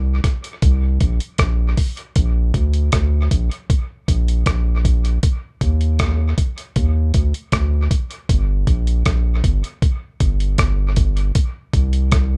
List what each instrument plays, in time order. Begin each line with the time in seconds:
Already playing: sub bass C2
0.24 kick, cross-stick, closed hi-hat
0.44 closed hi-hat
0.62 sub bass C2, kick, closed hi-hat
1.00 sub bass A#1, kick, closed hi-hat
1.20 closed hi-hat
1.38 sub bass A#1, kick, cross-stick, closed hi-hat
1.77 kick, open hi-hat
1.97 closed hi-hat
2.16 sub bass A#1, kick, closed hi-hat
2.54 sub bass D2, kick, closed hi-hat
2.73 closed hi-hat
2.92 sub bass D2, kick, cross-stick, closed hi-hat
3.31 sub bass A#1, kick, closed hi-hat
3.51 closed hi-hat
3.70 kick, closed hi-hat
4.08 sub bass A#1, kick, closed hi-hat
4.28 closed hi-hat
4.46 sub bass A#1, kick, cross-stick, closed hi-hat
4.85 kick, closed hi-hat
5.05 closed hi-hat
5.23 kick, closed hi-hat
5.61 sub bass D#2, kick, closed hi-hat
5.81 closed hi-hat
5.99 kick, cross-stick, closed hi-hat
6.38 kick, closed hi-hat
6.58 closed hi-hat
6.76 sub bass D#2, kick, closed hi-hat
7.14 sub bass D2, kick, closed hi-hat
7.34 closed hi-hat
7.52 sub bass D2, kick, cross-stick, closed hi-hat
7.91 kick, closed hi-hat
8.11 closed hi-hat
8.29 sub bass G1, kick, closed hi-hat
8.67 sub bass A#1, kick, closed hi-hat
8.87 closed hi-hat
9.05 sub bass A#1, kick, cross-stick, closed hi-hat
9.44 sub bass G1, kick, closed hi-hat
9.64 closed hi-hat
9.82 kick, closed hi-hat
10.20 sub bass G1, kick, closed hi-hat
10.40 closed hi-hat
10.58 sub bass G1, kick, cross-stick, closed hi-hat
10.96 kick, closed hi-hat
11.17 closed hi-hat
11.35 kick, closed hi-hat
11.73 sub bass C2, kick, closed hi-hat
11.93 closed hi-hat
12.12 kick, cross-stick, closed hi-hat